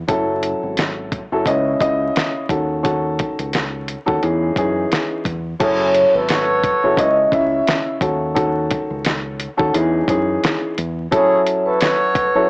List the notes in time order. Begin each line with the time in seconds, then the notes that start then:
0.08 F#1 F#3 C#4 E4 A4, kick, closed hi-hat
0.43 closed hi-hat
0.63 G#1
0.77 snare, closed hi-hat
1.12 kick, closed hi-hat
1.32 F#1 F#3 C#4 E4 A4
1.46 C#2 C#3 C#4 E4 D#5, kick, closed hi-hat
1.80 C#2 C#3 C#4 E4 D#5, kick, closed hi-hat
2.16 snare, closed hi-hat
2.49 D#2 D#3 C#4 F#4 A4, kick, closed hi-hat
2.83 D#3 C#4 F#4 A4, kick, closed hi-hat
3.19 kick, closed hi-hat
3.39 C#2, closed hi-hat
3.53 snare, closed hi-hat
3.88 closed hi-hat
4.06 D#2 D#3 C#4 F#4 A4, kick
4.22 E2 E3 C#4 D#4 G#4, closed hi-hat
4.56 F#2 E3 C#4 D#4 G#4, kick, closed hi-hat
4.92 snare, closed hi-hat
5.25 E2, kick, closed hi-hat
5.60 F#1 F#3 C#4 E4 G#4 A4 C#5, kick, closed hi-hat, crash
5.95 closed hi-hat
6.14 G#1 E4 F#4 A4 B4
6.29 F#4 A4 C#5, snare, closed hi-hat
6.64 kick, closed hi-hat
6.84 F#1 F#3 C#4 E4 A4
6.97 C#2 C#3 C#4 E4 D#5, kick, closed hi-hat
7.32 C#2 C#3 C#4 E4 E5, kick, closed hi-hat
7.67 snare, closed hi-hat
8.01 D#2 D#3 C#4 F#4 A4, kick, closed hi-hat
8.34 D#3 C#4 F#4 A4, kick, closed hi-hat
8.71 kick, closed hi-hat
8.90 C#2
9.05 snare, closed hi-hat
9.40 closed hi-hat
9.57 D#2 D#3 C#4 F#4 A4, kick
9.74 E2 E3 C#4 D#4 G#4, closed hi-hat
10.08 F#2 E3 C#4 D#4 G#4, kick, closed hi-hat
10.43 snare, closed hi-hat
10.78 E2, closed hi-hat
11.11 F#3 C#4 E4 G#4 A4 C#5, kick, closed hi-hat
11.47 closed hi-hat
11.66 E4 F#4 A4 B4
11.81 F#4 A4 C#5, snare, closed hi-hat
12.15 kick, closed hi-hat
12.35 F#3 C#4 E4 A4